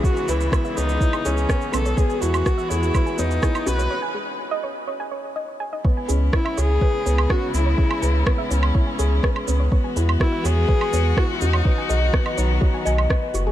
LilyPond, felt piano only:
\new Staff \with { instrumentName = "Felt piano" } { \time 4/4 \key cis \minor \tempo 4 = 124 gis'8 b'8 b8 gis'8 e'8 gis'8 b8 b8 | b8 e'8 fis'8 gis'8 b'8 b8 e'8 fis'8 | r1 | b8 cis'8 e'8 gis'8 b'8 b8 cis'8 e'8 |
gis'8 b'8 b8 cis'8 e'8 gis'8 b'8 b8 | b8 e'8 fis'8 gis'8 b'8 b8 e'8 fis'8 | b'8 dis''8 b8 dis'8 fis'8 dis''8 b'8 fis'8 | }